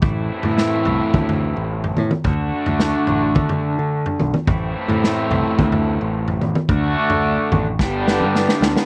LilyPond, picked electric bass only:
\new Staff \with { instrumentName = "Picked electric bass" } { \clef bass \time 4/4 \key a \minor \tempo 4 = 108 a,,8 r16 a,8. c,16 r16 d,8. a,,8. a,16 r16 | d,8 r16 d,8 r16 a,,8 d8. d8 r16 b,,16 r16 | a,,8 r16 a,8. c,16 r16 d,8. a,,8. a,,16 r16 | d,8 r16 d,8 r16 a,,8 g,,8. g,8 r16 d,16 r16 | }